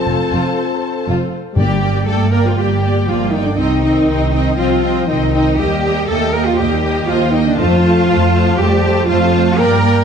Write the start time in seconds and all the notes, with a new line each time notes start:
Already playing: C4 F4 A4 C5 A5
0.07 F1 F2 F4
0.32 F1 F2 F4
1.07 F1 F2 F4
1.54 G1 G2 G3 A#3 G4 D5 G5
1.79 A#3 D5 G5
2.06 G1 A3 A#3 A4 D5 G5
2.31 A#3 A#4 D5 G5
2.44 F3 F4
2.55 G1 G3 A#3 G4 D5 G5
2.81 A#3 D5 G5
3.06 G1 F3 A#3 F4 D5 G5
3.30 D#3 A#3 D#4 D5 G5
3.44 D3 D4
3.56 C2 D#3 C4 D#4 D#5 G5
3.82 C4 D#5 G5
4.07 C2 C4 D#5 G5
4.31 C4 D#5 G5
4.56 C2 F3 C4 F4 D#5 G5
4.80 C4 D#5 G5
5.06 C2 D#3 C4 D#4 D#5 G5
5.33 C4 D#5 G5
5.57 D#2 G3 A#3 G4 D#5 G5
5.83 A#3 D#5 G5
6.07 D#2 A3 A#3 A4 D#5 G5
6.32 A#3 A#4 D#5 G5
6.46 F3 F4
6.58 D#2 G3 A#3 G4 D#5 G5
6.82 A#3 D#5 G5
7.07 D#2 F3 A#3 F4 D#5 G5
7.31 D#3 A#3 D#4 D#5 G5
7.47 D3 D4
7.56 F2 F3 A3 F4 C5 A5
7.81 A3 C5 A5
8.08 F2 A3 C5 A5
8.32 A3 C5 A5
8.57 F2 G3 A3 G4 C5 A5
8.83 A3 C5 A5
9.07 F2 F3 A3 F4 C5 A5
9.34 A3 C5 A5
9.59 G2 A#3 A#4 D5 G5
9.82 A#3 D5 G5